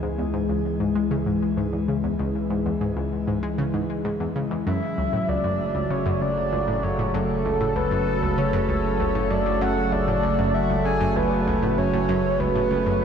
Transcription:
Already playing: analog synth bass C#2, analog synth pad E3 G#3 E4 G#4 E5
0.03 synth arpeggio sound G#2
0.18 synth arpeggio sound E2
0.34 synth arpeggio sound G#2
0.49 synth arpeggio sound C#2
0.80 synth arpeggio sound G#2
0.95 synth arpeggio sound G#3
1.11 synth arpeggio sound C#3
1.26 synth arpeggio sound G#2
1.57 synth arpeggio sound G#2
1.73 synth arpeggio sound E2
1.88 synth arpeggio sound C#3
2.04 synth arpeggio sound E2
2.19 synth arpeggio sound C#2
2.50 synth arpeggio sound G#2
2.66 synth arpeggio sound E2
2.81 synth arpeggio sound G#2
2.97 synth arpeggio sound C#2
3.27 synth arpeggio sound G#2
3.43 synth arpeggio sound G#3
3.58 synth arpeggio sound C#3
3.74 synth arpeggio sound G#2
4.05 synth arpeggio sound G#2
4.20 synth arpeggio sound E2
4.36 synth arpeggio sound C#3
4.51 synth arpeggio sound E2
4.67 analog synth bass F#1, synth arpeggio sound F#2, analog synth pad C#3, soft synth lead E5
4.77 analog synth pad F#3
4.83 analog synth pad F#4
4.98 synth arpeggio sound C#2
5.13 synth arpeggio sound A2
5.18 analog synth pad A3
5.29 synth arpeggio sound C#2, soft synth lead D5
5.44 synth arpeggio sound F#2
5.75 synth arpeggio sound C#2
5.90 synth arpeggio sound C#3, soft synth lead C#5
5.99 analog synth pad A4
6.06 synth arpeggio sound F#2
6.21 synth arpeggio sound C#2, soft synth lead D5
6.52 synth arpeggio sound C#2
6.68 synth arpeggio sound A2
6.83 synth arpeggio sound F#2, soft synth lead C#5
6.99 synth arpeggio sound A2
7.14 synth arpeggio sound F#2, soft synth lead A4
7.45 synth arpeggio sound C#2
7.61 synth arpeggio sound A2
7.76 synth arpeggio sound C#2, soft synth lead B4
7.91 synth arpeggio sound F#2
8.22 synth arpeggio sound C#2
8.38 synth arpeggio sound C#3, soft synth lead C#5
8.53 synth arpeggio sound F#2
8.69 synth arpeggio sound C#2, soft synth lead C#5
9.00 synth arpeggio sound C#2
9.15 synth arpeggio sound A2
9.30 synth arpeggio sound F#2, soft synth lead D5
9.46 synth arpeggio sound A2
9.61 synth arpeggio sound F#2, soft synth lead F#5
9.92 synth arpeggio sound C#2, soft synth lead D5
10.08 synth arpeggio sound A2
10.23 synth arpeggio sound C#2
10.39 synth arpeggio sound F#2
10.54 soft synth lead E5
10.70 synth arpeggio sound C#2
10.85 synth arpeggio sound C#3, soft synth lead G#5
11.01 synth arpeggio sound F#2
11.16 synth arpeggio sound C#2, soft synth lead B4
11.47 synth arpeggio sound C#2
11.63 synth arpeggio sound A2
11.78 synth arpeggio sound F#2, soft synth lead C#5
11.93 synth arpeggio sound A2
12.09 synth arpeggio sound F#2
12.40 synth arpeggio sound C#2, soft synth lead B4
12.55 synth arpeggio sound A2
12.71 synth arpeggio sound C#2
12.86 synth arpeggio sound F#2

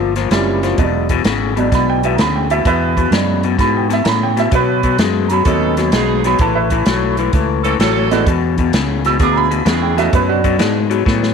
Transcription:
Already playing: fingered electric bass G1, clean electric guitar A#2 F3, grand piano E5
0.16 clean electric guitar A#2 F3, snare, closed hi-hat
0.31 fingered electric bass F#1, clean electric guitar A#2 G3, grand piano G3 C4 C#4 E4, snare, closed hi-hat
0.63 clean electric guitar A#2 F3, snare, closed hi-hat
0.78 fingered electric bass E1, clean electric guitar E2 B2, grand piano F#3 G#3 B3 D4, kick, closed hi-hat
1.09 clean electric guitar E2 B2, kick, closed hi-hat
1.24 fingered electric bass G#1, clean electric guitar E2 C#3, snare, closed hi-hat
1.56 clean electric guitar E2 B2, grand piano F#3 G#3 B3 D4, closed hi-hat
1.72 fingered electric bass B1, clean electric guitar E2 B2, grand piano B5, kick, snare, closed hi-hat
1.90 grand piano G5
2.03 clean electric guitar E2 B2, grand piano E5, closed hi-hat
2.16 fingered electric bass D2, clean electric guitar E2 C#3, grand piano A#5, snare, closed hi-hat
2.21 grand piano B5
2.36 grand piano G5
2.50 clean electric guitar E2 B2, grand piano E5, closed hi-hat
2.65 fingered electric bass E2, clean electric guitar E2 B2, grand piano B4 E5, kick, closed hi-hat
2.97 clean electric guitar E2 B2, kick, closed hi-hat
3.11 clean electric guitar E2 C#3, fingered electric bass F#2, grand piano F#3 G#3 B3 D4, snare, closed hi-hat
3.43 clean electric guitar E2 B2, closed hi-hat
3.58 clean electric guitar E2 B2, fingered electric bass G#2, grand piano B5, kick, snare, closed hi-hat
3.77 grand piano G5
3.90 clean electric guitar E2 B2, grand piano E5, snare, closed hi-hat
4.04 clean electric guitar E2 C#3, fingered electric bass A2, grand piano A#5, snare, closed hi-hat
4.09 grand piano B5
4.23 grand piano G5
4.37 clean electric guitar E2 B2, grand piano E5, snare, closed hi-hat
4.51 clean electric guitar B2 F#3, fingered electric bass B2, grand piano B4, kick, closed hi-hat
4.83 clean electric guitar B2 F#3, kick, closed hi-hat
4.98 fingered electric bass F#2, clean electric guitar B2 G#3, snare, closed hi-hat
5.28 clean electric guitar B2 F#3, grand piano A#5, closed hi-hat
5.33 grand piano B5
5.45 fingered electric bass D#2, clean electric guitar B2 F#3, grand piano F#3 A3 C#4 D#4, saxophone section B3 D#4 A4, kick, closed hi-hat
5.77 clean electric guitar B2 F#3, snare, closed hi-hat
5.92 fingered electric bass B1, clean electric guitar B2 G#3, saxophone section B3 D#4 G#4, snare, closed hi-hat
6.24 clean electric guitar B2 F#3, grand piano B5, snare, closed hi-hat
6.39 fingered electric bass A1, clean electric guitar A2 E3, grand piano A5, kick, closed hi-hat
6.55 grand piano B4 E5
6.70 clean electric guitar A2 E3, kick, closed hi-hat
6.86 fingered electric bass B1, clean electric guitar A2 F#3, snare, closed hi-hat
7.17 clean electric guitar A2 E3, closed hi-hat
7.33 fingered electric bass C#2, clean electric guitar A2 E3, kick, closed hi-hat
7.63 clean electric guitar A2 E3, saxophone section C#4 G4 A4, closed hi-hat
7.79 fingered electric bass A1, clean electric guitar A2 F#3, saxophone section C#4 G4 A4, snare, closed hi-hat
8.11 clean electric guitar A2 E3, grand piano G#3 B3 D4 F#4, snare, closed hi-hat
8.26 fingered electric bass E2, clean electric guitar E2 B2, kick, closed hi-hat
8.58 clean electric guitar E2 B2, kick, closed hi-hat
8.72 fingered electric bass C#2, clean electric guitar E2 C#3, snare, closed hi-hat
9.05 clean electric guitar E2 B2, grand piano E6, snare, closed hi-hat
9.19 fingered electric bass D2, clean electric guitar E2 B2, saxophone section D4 E4 G#4, kick, snare, closed hi-hat
9.23 grand piano D6
9.33 grand piano A#5
9.37 grand piano B5
9.51 clean electric guitar E2 B2, closed hi-hat
9.65 clean electric guitar E2 C#3, fingered electric bass E2, saxophone section D4 E4 G#4, snare, closed hi-hat
9.83 grand piano G5
9.97 clean electric guitar E2 B2, grand piano A3 C#4 D#4 F#4 E5, snare, closed hi-hat
10.13 fingered electric bass F#2, clean electric guitar B2 F#3, grand piano B4, kick, closed hi-hat
10.28 grand piano D4 F#4
10.44 clean electric guitar B2 F#3, kick, closed hi-hat
10.59 fingered electric bass G#2, clean electric guitar B2 G#3, snare, closed hi-hat
10.90 clean electric guitar B2 F#3, closed hi-hat
11.06 fingered electric bass A2, clean electric guitar B2 F#3, kick, snare
11.23 snare

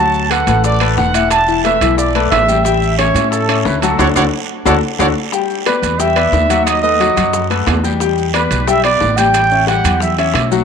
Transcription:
Already playing: upright bass D2, grand piano F#3 F#4 F#5, trumpet section A5
0.14 high conga, maracas
0.30 grand piano A3 A4 B4, trumpet section F#5, high bongo, high conga, high timbale, short guiro, claves, maracas
0.47 upright bass A1, grand piano A3 A4 B4, high conga, high timbale, short guiro, maracas
0.64 trumpet section D5, high bongo, high conga, long guiro, maracas
0.80 grand piano A3 A4 B4, high conga, high timbale, claves, maracas
0.97 upright bass E1, trumpet section F#5, high bongo, low bongo, high conga, short guiro, maracas
1.14 grand piano E3 E4 E5, high conga, high timbale, short guiro, maracas
1.30 trumpet section A5, high bongo, high conga, high timbale, long guiro, claves, maracas
1.48 grand piano E3 E4 E5, high conga, maracas
1.64 grand piano A3 A4 B4, trumpet section E5, high bongo, high conga, high timbale, short guiro, maracas
1.81 upright bass B1, grand piano E3 E4 E5, high bongo, high conga, low conga, high timbale, short guiro, claves, maracas
1.97 trumpet section D5, high bongo, long guiro, maracas
2.15 grand piano A3 A4 B4, high bongo, high conga, high timbale, maracas
2.31 upright bass A1, trumpet section E5, high bongo, low bongo, high conga, high timbale, low timbale, short guiro, claves, maracas
2.48 grand piano G3 G4 G5, high bongo, high conga, short guiro, maracas
2.64 grand piano G3 G4 G5, trumpet section E5, high bongo, high conga, long guiro, maracas
2.82 high conga, maracas
2.97 grand piano C#4 C#5 E5, trumpet section C#5, high bongo, high conga, high timbale, short guiro, claves, maracas
3.14 upright bass A2, grand piano C#4 C#5 E5, high conga, high timbale, short guiro, maracas
3.31 trumpet section A4, high bongo, high conga, long guiro, maracas
3.49 grand piano C#4 C#5 E5, high conga, high timbale, claves, maracas
3.65 upright bass D2, trumpet section B4, high bongo, low bongo, high conga, short guiro, maracas
3.81 grand piano F#3 F#4 F#5, trumpet section A4, high conga, high timbale, short guiro, maracas
3.98 upright bass D2, grand piano D4 F#4 A4, trumpet section C#5 D5 F#5, high bongo, high conga, high timbale, long guiro, claves, maracas
4.15 upright bass D2, grand piano D4 F#4 A4, trumpet section C#5 D5 F#5, high bongo, high conga, high timbale, long guiro, claves, maracas
4.65 upright bass D2, grand piano D4 F#4 A4, trumpet section C#5 D5 F#5, high bongo, high conga, high timbale, long guiro, claves, maracas
4.99 upright bass D2, grand piano D4 F#4 A4, trumpet section C#5 D5 F#5, high bongo, high conga, high timbale, long guiro, claves, maracas
5.32 grand piano G3 G4 G5, high bongo, high conga, maracas
5.50 high conga, maracas
5.66 grand piano B3 B4 D5, trumpet section B4, high bongo, high conga, high timbale, short guiro, claves, maracas
5.82 upright bass E2, high conga, high timbale, short guiro, maracas
5.99 grand piano G3 G4 G5, trumpet section E5, high bongo, high conga, long guiro, maracas
6.16 grand piano B3 B4 D5, high conga, high timbale, claves, maracas
6.32 upright bass D#2, high bongo, low bongo, high conga, short guiro, maracas
6.50 grand piano F#3 F#4 F#5, high conga, high timbale, short guiro, maracas
6.66 trumpet section D#5, high bongo, high timbale, long guiro, claves, maracas
6.83 grand piano A3 A4 B4, trumpet section D#5, maracas
7.00 grand piano F#3 F#4 F#5, high bongo, high conga, high timbale, short guiro, maracas
7.17 upright bass F#2, grand piano F#3 F#4 F#5, high bongo, high conga, low conga, high timbale, short guiro, claves, maracas
7.33 high bongo, high conga, low conga, long guiro, maracas
7.50 grand piano A3 A4 B4, high bongo, high conga, high timbale, maracas
7.67 upright bass E2, high bongo, low bongo, high conga, high timbale, low timbale, short guiro, claves, maracas
7.83 grand piano G3 G4 G5, high bongo, high conga, short guiro, maracas
8.00 grand piano G3 G4 G5, high bongo, high conga, long guiro, maracas
8.18 high conga, maracas
8.34 grand piano B3 B4 D5, trumpet section B4, high bongo, high conga, high timbale, short guiro, claves, maracas
8.51 upright bass B1, high conga, high timbale, short guiro, maracas
8.67 grand piano G3 G4 G5, trumpet section E5, high bongo, high conga, long guiro, maracas
8.84 grand piano B3 B4 D5, trumpet section D5, high conga, high timbale, claves, maracas
9.01 upright bass A1, high bongo, low bongo, high conga, short guiro, maracas
9.17 grand piano G3 G4 G5, trumpet section G5, high conga, high timbale, short guiro, maracas
9.34 high bongo, high conga, high timbale, long guiro, claves, maracas
9.51 grand piano C#4 C#5 E5, high conga, maracas
9.67 grand piano G3 G4 G5, trumpet section F#5, high bongo, high conga, high timbale, short guiro, maracas
9.84 upright bass E2, grand piano G3 G4 G5, high bongo, high conga, low conga, high timbale, short guiro, claves, maracas
10.00 trumpet section E5, high bongo, high conga, low conga, long guiro, maracas
10.17 grand piano C#4 C#5 E5, trumpet section E5, high bongo, high conga, high timbale, maracas
10.34 upright bass B1, high bongo, low bongo, high conga, high timbale, short guiro, claves, maracas
10.51 grand piano F#3 F#4 F#5, high bongo, high conga, short guiro, maracas

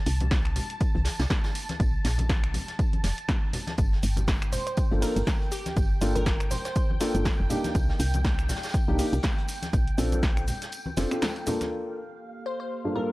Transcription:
Already playing: string machine A5
0.06 fm bass C2, open hi-hat, tambourine
0.20 closed hi-hat, high conga, low conga
0.31 kick, snare, closed hi-hat, tambourine
0.45 finger snap, closed hi-hat
0.56 open hi-hat, tambourine, low conga
0.70 closed hi-hat
0.80 kick, closed hi-hat, tambourine
0.95 fm bass C2, closed hi-hat, high conga
1.05 snare, open hi-hat, tambourine
1.19 fm bass C2, snare, closed hi-hat, tambourine
1.30 kick, snare, closed hi-hat, high conga
1.44 snare, tambourine
1.55 open hi-hat, tambourine
1.69 snare, closed hi-hat, high conga
1.80 fm bass A#1, kick, closed hi-hat, tambourine
2.05 fm bass A#1, snare, open hi-hat, tambourine
2.18 closed hi-hat, high conga, low conga
2.29 kick, snare, closed hi-hat, tambourine
2.44 finger snap, closed hi-hat
2.54 open hi-hat, tambourine, high conga, low conga
2.68 snare, closed hi-hat
2.79 kick, closed hi-hat, tambourine
2.93 closed hi-hat, high conga
3.04 fm bass F1, snare, open hi-hat, tambourine
3.18 closed hi-hat
3.28 kick, snare, closed hi-hat, tambourine, high conga
3.53 open hi-hat, tambourine, low conga
3.67 snare, closed hi-hat, high conga
3.78 fm bass G1, string machine G5, kick, closed hi-hat, tambourine, shaker
3.92 snare
4.03 fm bass G1, open hi-hat, tambourine, shaker
4.16 closed hi-hat, high conga, low conga, shaker
4.28 kick, snare, closed hi-hat, tambourine, shaker
4.42 finger snap, closed hi-hat, shaker
4.53 synth pluck C5, open hi-hat, tambourine, low conga, shaker
4.67 synth pluck C5, closed hi-hat, shaker
4.77 kick, closed hi-hat, tambourine, shaker
4.91 fm bass G1, felt piano A#3 D4 F4 A4, closed hi-hat, high conga
5.02 felt piano A#3 D4 F4 A4, synth pluck A#4, open hi-hat, shaker
5.16 fm bass G1, closed hi-hat, muted conga, shaker
5.27 kick, snare, closed hi-hat, tambourine, high conga, shaker
5.41 closed hi-hat
5.51 synth pluck G4, open hi-hat, tambourine, shaker
5.66 snare, closed hi-hat, high conga, shaker
5.76 fm bass G1, kick, closed hi-hat, tambourine, shaker
6.01 fm bass G1, felt piano A#3 D4 F4 A4, open hi-hat, tambourine, shaker
6.15 synth pluck A#4, closed hi-hat, high conga, low conga, shaker
6.26 kick, snare, closed hi-hat, tambourine, shaker
6.40 finger snap, closed hi-hat, shaker
6.51 synth pluck C5, open hi-hat, tambourine, high conga, low conga, shaker
6.65 synth pluck C5, snare, closed hi-hat, shaker
6.75 kick, closed hi-hat, tambourine, shaker
6.90 high conga
7.00 felt piano A#3 D4 F4 A4, snare, open hi-hat, tambourine, muted conga, shaker
7.14 fm bass G1, felt piano A#3 D4 F4 A4, closed hi-hat, shaker
7.25 kick, snare, closed hi-hat, tambourine, high conga, shaker
7.39 fm bass F1
7.50 felt piano A#3 D4 D#4 G4, open hi-hat, tambourine, low conga, shaker
7.64 snare, closed hi-hat, muted conga, high conga, shaker
7.75 fm bass C2, kick, closed hi-hat, tambourine, shaker
7.89 snare
8.00 fm bass C2, open hi-hat, tambourine, shaker
8.14 closed hi-hat, high conga, low conga, shaker
8.25 kick, snare, closed hi-hat, tambourine, shaker
8.39 finger snap, closed hi-hat, shaker
8.49 snare, open hi-hat, tambourine, high conga, low conga, shaker
8.56 snare, tambourine
8.63 snare, closed hi-hat, tambourine, shaker
8.69 snare, tambourine
8.74 kick, closed hi-hat, tambourine, shaker
8.88 fm bass C2, felt piano A#3 D4 D#4 G4, closed hi-hat, high conga
8.99 felt piano A#3 D4 D#4 G4, open hi-hat, shaker
9.13 fm bass C2, closed hi-hat, muted conga, shaker
9.23 kick, snare, closed hi-hat, tambourine, high conga, shaker
9.38 closed hi-hat
9.49 open hi-hat, tambourine, shaker
9.62 snare, closed hi-hat, high conga, shaker
9.73 fm bass A#1, kick, closed hi-hat, tambourine, shaker
9.88 closed hi-hat
9.98 fm bass A#1, felt piano C4 D4 F4 A4, open hi-hat, tambourine, shaker
10.12 closed hi-hat, high conga, low conga, shaker
10.23 kick, snare, closed hi-hat, tambourine, shaker
10.37 finger snap, closed hi-hat, shaker
10.48 open hi-hat, tambourine, low conga, shaker
10.62 snare, closed hi-hat, shaker
10.72 closed hi-hat, tambourine, shaker
10.86 high conga
10.97 fm bass F1, felt piano C4 D4 F4 A4, snare, open hi-hat, tambourine, muted conga, shaker
11.11 felt piano C4 D4 F4 A4, finger snap, closed hi-hat, shaker
11.22 snare, closed hi-hat, tambourine, high conga, shaker
11.36 closed hi-hat
11.47 felt piano A#3 D4 F4 A4, open hi-hat, tambourine, muted conga, low conga, shaker
11.61 snare, closed hi-hat, muted conga, high conga, shaker
11.72 analog synth pad A#3 G4 A4 F5, string machine F5
12.46 synth pluck C5
12.60 synth pluck C5
12.85 felt piano G2 A#3 D4 F4 A4
12.95 felt piano G2 A#3 D4 F4 A4, synth pluck A#4

